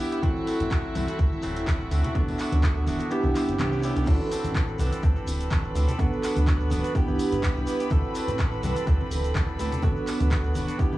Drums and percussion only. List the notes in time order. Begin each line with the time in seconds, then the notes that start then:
0.12 closed hi-hat, maracas
0.23 kick, closed hi-hat, high conga, maracas
0.36 maracas
0.47 open hi-hat, maracas
0.60 closed hi-hat, high conga, maracas
0.71 kick, clap, closed hi-hat, maracas
0.84 maracas
0.95 open hi-hat, high conga, maracas
1.08 closed hi-hat, maracas
1.19 kick, closed hi-hat, maracas
1.32 high conga, maracas
1.42 open hi-hat, maracas
1.56 closed hi-hat, maracas
1.67 kick, clap, closed hi-hat, high conga, maracas
1.81 maracas
1.91 open hi-hat, maracas
2.04 closed hi-hat, low conga, maracas
2.15 kick, closed hi-hat, high conga, maracas
2.28 open hi-hat, low conga, maracas
2.38 clap, open hi-hat, maracas
2.52 closed hi-hat, high conga, maracas
2.63 kick, clap, closed hi-hat, maracas
2.76 maracas
2.87 open hi-hat, high conga, maracas
2.99 closed hi-hat, maracas
3.10 closed hi-hat, maracas
3.23 high conga, maracas
3.35 clap, open hi-hat, maracas
3.48 closed hi-hat, maracas
3.59 clap, closed hi-hat, high conga, maracas
3.72 maracas
3.83 open hi-hat, maracas
3.96 closed hi-hat, maracas
4.06 kick, closed hi-hat, crash, high conga, cabasa, maracas
4.20 maracas
4.31 open hi-hat, cabasa, maracas
4.44 closed hi-hat, high conga, cabasa, maracas
4.55 kick, clap, closed hi-hat, cabasa, maracas
4.68 maracas
4.79 open hi-hat, high conga, cabasa, maracas
4.92 closed hi-hat, cabasa, maracas
5.03 kick, closed hi-hat, cabasa, maracas
5.16 high conga, maracas
5.27 open hi-hat, cabasa, maracas
5.40 closed hi-hat, cabasa, maracas
5.50 kick, clap, closed hi-hat, high conga, cabasa, maracas
5.64 maracas
5.75 open hi-hat, cabasa, maracas
5.88 closed hi-hat, low conga, cabasa, maracas
5.99 kick, closed hi-hat, high conga, cabasa, maracas
6.13 maracas
6.23 clap, open hi-hat, cabasa, maracas
6.36 closed hi-hat, high conga, cabasa, maracas
6.47 kick, clap, closed hi-hat, cabasa, maracas
6.60 maracas
6.71 open hi-hat, high conga, cabasa, maracas
6.84 closed hi-hat, cabasa, maracas
6.95 kick, closed hi-hat, cabasa, maracas
7.08 high conga, maracas
7.19 open hi-hat, cabasa, maracas
7.32 closed hi-hat, cabasa, maracas
7.43 kick, clap, closed hi-hat, high conga, cabasa, maracas
7.57 maracas
7.67 open hi-hat, cabasa, maracas
7.79 closed hi-hat, cabasa, maracas
7.90 kick, closed hi-hat, high conga, cabasa, maracas
8.04 maracas
8.15 open hi-hat, cabasa, maracas
8.28 closed hi-hat, high conga, cabasa, maracas
8.38 kick, clap, closed hi-hat, cabasa, maracas
8.53 maracas
8.63 open hi-hat, high conga, cabasa, maracas
8.76 closed hi-hat, cabasa, maracas
8.87 kick, closed hi-hat, cabasa, maracas
9.00 high conga, maracas
9.11 open hi-hat, cabasa, maracas
9.24 closed hi-hat, cabasa, maracas
9.35 kick, clap, closed hi-hat, high conga, cabasa, maracas
9.48 maracas
9.59 open hi-hat, cabasa, maracas
9.72 closed hi-hat, low conga, cabasa, maracas
9.83 kick, closed hi-hat, high conga, cabasa, maracas
9.96 maracas
10.07 clap, open hi-hat, cabasa, maracas
10.20 closed hi-hat, high conga, cabasa, maracas
10.31 kick, clap, closed hi-hat, cabasa, maracas
10.44 maracas
10.55 open hi-hat, high conga, cabasa, maracas
10.68 closed hi-hat, cabasa, maracas
10.79 kick, closed hi-hat, cabasa, maracas
10.92 high conga, maracas